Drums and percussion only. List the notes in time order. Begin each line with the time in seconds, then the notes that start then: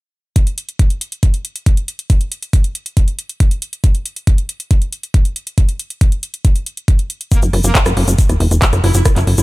0.36 kick, closed hi-hat
0.47 closed hi-hat
0.58 closed hi-hat
0.69 closed hi-hat
0.79 kick, closed hi-hat
0.90 closed hi-hat
1.01 closed hi-hat
1.12 closed hi-hat
1.23 kick, closed hi-hat
1.34 closed hi-hat
1.45 closed hi-hat
1.56 closed hi-hat
1.66 kick, closed hi-hat
1.77 closed hi-hat
1.88 closed hi-hat
1.99 closed hi-hat
2.10 kick, closed hi-hat
2.21 closed hi-hat
2.32 closed hi-hat
2.42 closed hi-hat
2.53 kick, closed hi-hat
2.64 closed hi-hat
2.75 closed hi-hat
2.86 closed hi-hat
2.97 kick, closed hi-hat
3.08 closed hi-hat
3.19 closed hi-hat
3.29 closed hi-hat
3.40 kick, closed hi-hat
3.51 closed hi-hat
3.62 closed hi-hat
3.73 closed hi-hat
3.84 kick, closed hi-hat
3.95 closed hi-hat
4.06 closed hi-hat
4.16 closed hi-hat
4.27 kick, closed hi-hat
4.38 closed hi-hat
4.49 closed hi-hat
4.60 closed hi-hat
4.71 kick, closed hi-hat
4.82 closed hi-hat
4.92 closed hi-hat
5.03 closed hi-hat
5.14 kick, closed hi-hat
5.25 closed hi-hat
5.36 closed hi-hat
5.47 closed hi-hat
5.58 kick, closed hi-hat
5.69 closed hi-hat
5.79 closed hi-hat
5.90 closed hi-hat
6.01 kick, closed hi-hat
6.12 closed hi-hat
6.23 closed hi-hat
6.34 closed hi-hat
6.45 kick, closed hi-hat
6.56 closed hi-hat
6.66 closed hi-hat
6.77 closed hi-hat
6.88 kick, closed hi-hat
6.99 closed hi-hat
7.10 closed hi-hat
7.21 closed hi-hat
7.32 kick, closed hi-hat, shaker
7.42 closed hi-hat, shaker
7.53 cross-stick, open hi-hat
7.64 closed hi-hat, shaker
7.75 kick, clap, closed hi-hat, shaker
7.86 cross-stick, closed hi-hat, shaker
7.97 open hi-hat
8.08 closed hi-hat, shaker
8.19 kick, closed hi-hat, shaker
8.29 cross-stick, closed hi-hat, shaker
8.40 open hi-hat
8.51 closed hi-hat, shaker
8.62 kick, clap, closed hi-hat, shaker
8.73 cross-stick, closed hi-hat, shaker
8.84 open hi-hat
8.94 closed hi-hat, shaker
9.05 kick, cross-stick, closed hi-hat, shaker
9.16 clap, closed hi-hat, shaker
9.27 open hi-hat
9.38 closed hi-hat, shaker